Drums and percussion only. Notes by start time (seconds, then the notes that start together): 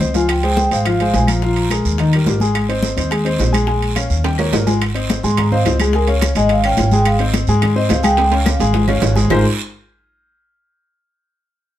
0.01 high conga, short guiro
0.14 high conga, low timbale, short guiro
0.29 high bongo, high timbale, long guiro, claves
0.43 high conga, high timbale
0.57 high bongo, high conga, low timbale, short guiro
0.71 high bongo, high conga, high timbale, short guiro
0.85 high bongo, high conga, high timbale, long guiro, claves
1.00 high conga, high timbale
1.14 high bongo, low bongo, high conga, low timbale, short guiro
1.27 high bongo, high conga, high timbale, short guiro, claves
1.42 high bongo, high conga, long guiro
1.56 high conga, high timbale
1.70 high bongo, high conga, high timbale, low timbale, short guiro, claves
1.84 high bongo, high conga, short guiro
1.98 high bongo, high conga, high timbale, long guiro
2.12 high bongo, high conga, high timbale, claves
2.26 high bongo, low bongo, high conga, low timbale, short guiro
2.40 high bongo, high conga, short guiro
2.55 high bongo, high conga, high timbale, long guiro, claves
2.69 high conga, high timbale
2.83 high bongo, high conga, low timbale, short guiro
2.97 high bongo, high conga, high timbale, short guiro
3.11 high bongo, high conga, high timbale, long guiro, claves
3.26 high bongo, high conga, high timbale
3.39 high bongo, low bongo, high conga, low timbale, short guiro
3.54 high conga, high timbale, short guiro, claves
3.67 high bongo, high conga, long guiro
3.82 high conga, high timbale
3.96 high bongo, high conga, high timbale, low timbale, short guiro, claves
4.10 high bongo, high conga, short guiro
4.24 high bongo, high conga, high timbale, long guiro
4.38 high conga, low timbale, claves
4.53 high bongo, low bongo, high conga, low timbale, short guiro
4.67 high bongo, high conga, low timbale, short guiro
4.81 high bongo, high conga, high timbale, long guiro, claves
4.96 high conga, high timbale
5.10 high bongo, high conga, high timbale, low timbale, short guiro
5.24 high bongo, short guiro
5.37 high bongo, high conga, low conga, high timbale, long guiro, claves
5.52 high bongo, high conga, low conga
5.66 high bongo, low bongo, high conga, high timbale, low timbale, short guiro
5.80 high conga, high timbale, short guiro, claves
5.93 high bongo, high conga, long guiro
6.07 high conga, high timbale
6.21 high bongo, high conga, high timbale, low timbale, short guiro, claves
6.35 high bongo, high conga, high timbale, short guiro
6.49 high bongo, high conga, high timbale, long guiro
6.64 high bongo, high conga, high timbale, claves
6.77 high bongo, low bongo, high conga, high timbale, low timbale, short guiro
6.91 high bongo, high conga, short guiro
7.05 high bongo, high conga, high timbale, long guiro, claves
7.19 high conga, high timbale
7.33 high bongo, high conga, high timbale, low timbale, short guiro
7.47 high bongo, short guiro
7.62 high bongo, high conga, low conga, high timbale, long guiro, claves
7.76 high bongo, high conga
7.89 high bongo, low bongo, high conga, high timbale, low timbale, short guiro
8.03 high bongo, high conga, high timbale, short guiro, claves
8.17 high bongo, high conga, high timbale, long guiro
8.32 high conga, high timbale
8.46 high bongo, high conga, high timbale, short guiro, claves
8.60 high bongo, high conga, high timbale, short guiro
8.74 high bongo, high conga, low timbale, long guiro
8.88 high bongo, low conga, low timbale, claves
9.02 high bongo, low bongo, low conga, low timbale, short guiro
9.16 high bongo, low conga, low timbale, short guiro
9.30 low bongo, low conga, low timbale, long guiro, claves